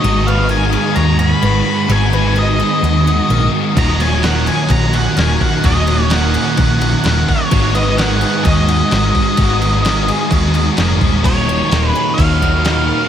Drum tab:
CC |----------------|----------------|x-x-x-x-x-x-x-x-|x-x-x-x-x-x-x-x-|
HH |----------------|----------------|----------------|----------------|
SD |----------------|----------------|---oo-------o---|---oo-------o---|
BD |----------------|----------------|o-------o-----o-|o-------o-----o-|

CC |x-x-x-x-x-x-x-x-|x-x-x-x-x-x-x-x-|----------------|
HH |----------------|----------------|o---o---o---o---|
SD |----o-------o---|---oo-------o---|----o-------o---|
BD |o-------o-----o-|o-------o-----o-|o-------o-o-----|